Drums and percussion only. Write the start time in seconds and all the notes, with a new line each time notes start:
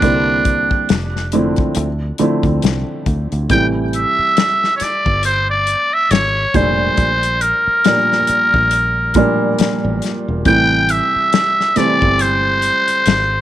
0.02 kick, closed hi-hat
0.45 kick, closed hi-hat
0.71 kick
0.89 snare, closed hi-hat
1.16 snare
1.32 closed hi-hat
1.56 kick, closed hi-hat
1.75 closed hi-hat
2.18 closed hi-hat
2.43 kick, closed hi-hat
2.62 snare, closed hi-hat
3.06 kick, closed hi-hat
3.32 closed hi-hat
3.50 kick, closed hi-hat
3.93 closed hi-hat
4.37 snare, closed hi-hat
4.64 snare
4.80 snare, closed hi-hat
5.06 kick
5.23 closed hi-hat
5.67 closed hi-hat
6.11 snare, closed hi-hat
6.54 kick, closed hi-hat
6.97 kick, closed hi-hat
7.23 closed hi-hat
7.41 closed hi-hat
7.85 snare, closed hi-hat
8.12 snare
8.27 closed hi-hat
8.54 kick
8.71 closed hi-hat
9.14 kick, closed hi-hat
9.59 snare, closed hi-hat
10.02 snare, closed hi-hat
10.45 kick, closed hi-hat
10.89 closed hi-hat
11.33 snare, closed hi-hat
11.61 snare
11.76 snare, closed hi-hat
12.02 kick
12.19 closed hi-hat
12.62 closed hi-hat
12.88 closed hi-hat
13.06 snare, closed hi-hat